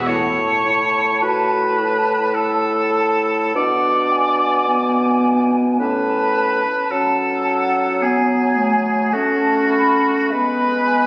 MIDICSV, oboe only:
0, 0, Header, 1, 2, 480
1, 0, Start_track
1, 0, Key_signature, 3, "major"
1, 0, Tempo, 1134216
1, 34, Time_signature, 3, 2, 24, 8
1, 993, Tempo, 1217039
1, 1473, Tempo, 1113173
1, 3873, Tempo, 1181102
1, 4353, Tempo, 1084991
1, 4688, End_track
2, 0, Start_track
2, 0, Title_t, "Oboe"
2, 0, Program_c, 0, 68
2, 29, Note_on_c, 0, 73, 64
2, 514, Note_off_c, 0, 73, 0
2, 517, Note_on_c, 0, 71, 56
2, 992, Note_on_c, 0, 69, 61
2, 998, Note_off_c, 0, 71, 0
2, 1469, Note_off_c, 0, 69, 0
2, 1472, Note_on_c, 0, 74, 76
2, 2304, Note_off_c, 0, 74, 0
2, 2438, Note_on_c, 0, 71, 78
2, 2916, Note_on_c, 0, 69, 56
2, 2922, Note_off_c, 0, 71, 0
2, 3398, Note_on_c, 0, 68, 52
2, 3404, Note_off_c, 0, 69, 0
2, 3876, Note_on_c, 0, 66, 67
2, 3882, Note_off_c, 0, 68, 0
2, 4351, Note_off_c, 0, 66, 0
2, 4354, Note_on_c, 0, 71, 80
2, 4688, Note_off_c, 0, 71, 0
2, 4688, End_track
0, 0, End_of_file